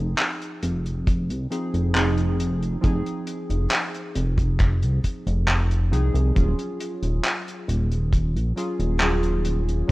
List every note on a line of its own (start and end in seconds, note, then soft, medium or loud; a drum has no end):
0.00 0.15 F1 medium
0.00 1.45 F3 medium
0.00 1.45 C4 medium
0.00 1.46 D#4 medium
0.00 1.46 G#4 medium
0.18 clap loud
0.18 closed hi-hat medium
0.42 closed hi-hat medium
0.63 1.31 F1 medium
0.63 closed hi-hat loud
0.86 closed hi-hat soft
1.07 kick loud
1.07 closed hi-hat medium
1.30 1.47 C2 medium
1.30 closed hi-hat medium
1.50 1.90 F3 medium
1.50 1.90 C4 medium
1.50 1.90 D#4 medium
1.50 1.90 G#4 medium
1.50 closed hi-hat medium
1.74 2.77 F1 loud
1.74 closed hi-hat soft
1.94 2.78 F3 medium
1.94 2.78 C4 medium
1.94 2.78 D#4 medium
1.94 2.78 G#4 loud
1.94 clap loud
1.94 closed hi-hat medium
2.18 closed hi-hat medium
2.40 closed hi-hat medium
2.63 closed hi-hat soft
2.81 3.02 F1 medium
2.81 5.86 F3 medium
2.81 5.86 C4 medium
2.81 5.87 D#4 medium
2.81 5.87 G#4 loud
2.81 kick loud
2.81 closed hi-hat medium
3.06 closed hi-hat medium
3.27 closed hi-hat medium
3.50 3.67 F1 medium
3.50 closed hi-hat medium
3.71 clap loud
3.71 closed hi-hat medium
3.95 closed hi-hat medium
4.15 4.84 F1 medium
4.15 closed hi-hat medium
4.38 kick loud
4.38 closed hi-hat soft
4.60 kick loud
4.60 clap soft
4.60 closed hi-hat medium
4.82 5.00 C2 medium
4.82 closed hi-hat soft
5.04 kick medium
5.04 closed hi-hat medium
5.27 5.94 F1 loud
5.27 closed hi-hat soft
5.48 clap loud
5.48 closed hi-hat medium
5.71 closed hi-hat medium
5.91 6.11 C2 medium
5.91 6.31 F3 medium
5.91 6.31 C4 medium
5.91 6.31 D#4 medium
5.91 6.31 G#4 loud
5.91 closed hi-hat loud
6.14 6.32 C2 loud
6.14 closed hi-hat medium
6.35 6.55 D#1 medium
6.35 8.51 F#3 medium
6.35 8.51 C#4 medium
6.35 8.52 F4 medium
6.35 8.52 G#4 medium
6.35 kick loud
6.35 closed hi-hat medium
6.59 closed hi-hat medium
6.81 closed hi-hat medium
7.03 7.20 D#1 medium
7.03 closed hi-hat medium
7.25 clap loud
7.25 closed hi-hat medium
7.48 closed hi-hat medium
7.68 8.37 D#1 medium
7.68 closed hi-hat medium
7.92 closed hi-hat medium
8.13 kick loud
8.13 closed hi-hat medium
8.35 8.53 A#1 medium
8.35 closed hi-hat soft
8.56 8.95 F#3 medium
8.56 8.96 C#4 medium
8.56 8.96 F4 medium
8.56 8.96 G#4 medium
8.56 closed hi-hat loud
8.79 9.83 D#1 loud
8.79 closed hi-hat medium
9.00 9.83 F#3 medium
9.00 9.84 C#4 medium
9.00 9.84 F4 medium
9.00 9.84 G#4 loud
9.00 clap loud
9.00 closed hi-hat medium
9.23 closed hi-hat medium
9.45 closed hi-hat loud
9.69 closed hi-hat medium
9.87 9.92 F#3 medium
9.87 9.92 C#4 medium